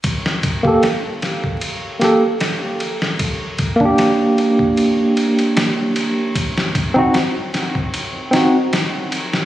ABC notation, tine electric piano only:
X:1
M:4/4
L:1/16
Q:"Swing 16ths" 1/4=76
K:Gm
V:1 name="Tine electric piano"
z3 [B,GA] z6 [B,GA] z4 z | z3 [B,DG]12- [B,DG] | z3 [CE_G] z6 [CEG] z4 z |]